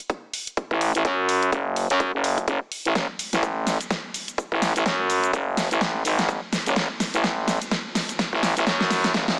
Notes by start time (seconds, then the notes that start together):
0.10 kick, closed hi-hat
0.34 open hi-hat
0.47 closed hi-hat
0.57 kick, closed hi-hat
0.71 A1, kick
0.81 open hi-hat
0.95 A1, closed hi-hat
1.05 F#2, kick, closed hi-hat
1.29 open hi-hat
1.43 closed hi-hat
1.52 F#1, kick, closed hi-hat
1.76 open hi-hat
1.90 F#2, closed hi-hat
2.00 kick, closed hi-hat
2.14 F#1
2.24 open hi-hat
2.38 kick, closed hi-hat
2.48 F#1, kick, closed hi-hat
2.72 open hi-hat
2.85 A1, closed hi-hat
2.95 F#1, kick, snare, closed hi-hat, shaker
3.19 open hi-hat, shaker
3.33 A1, snare, closed hi-hat, shaker
3.43 kick, closed hi-hat, shaker
3.67 snare, open hi-hat, shaker
3.81 closed hi-hat, shaker
3.91 kick, snare, closed hi-hat, shaker
4.14 open hi-hat, shaker
4.28 closed hi-hat, shaker
4.38 kick, closed hi-hat, shaker
4.52 A1, kick
4.62 snare, open hi-hat, shaker
4.76 A1, closed hi-hat, shaker
4.86 F#2, kick, snare, closed hi-hat, shaker
5.10 open hi-hat, shaker
5.24 closed hi-hat, shaker
5.33 F#1, kick, closed hi-hat, shaker
5.57 snare, open hi-hat, shaker
5.71 A1, closed hi-hat, shaker
5.81 kick, snare, closed hi-hat, shaker
6.05 G#1, open hi-hat, shaker
6.19 snare, closed hi-hat, shaker
6.29 kick, closed hi-hat, shaker
6.53 snare, open hi-hat, shaker
6.66 F#1, closed hi-hat, shaker
6.76 kick, snare, closed hi-hat, shaker
7.00 snare, open hi-hat, shaker
7.14 A1, closed hi-hat, shaker
7.24 kick, snare, closed hi-hat, shaker
7.48 snare, open hi-hat, shaker
7.62 closed hi-hat, shaker
7.71 kick, snare, closed hi-hat, shaker
7.95 snare, open hi-hat, shaker
8.09 closed hi-hat, shaker
8.19 kick, snare, closed hi-hat, shaker
8.33 A1, kick
8.43 snare, open hi-hat, shaker
8.57 A1, closed hi-hat, shaker
8.67 F#2, kick, snare, closed hi-hat, shaker
8.81 snare
8.91 snare, open hi-hat, shaker
9.04 snare, closed hi-hat, shaker
9.14 F#1, kick, snare, closed hi-hat, shaker
9.28 snare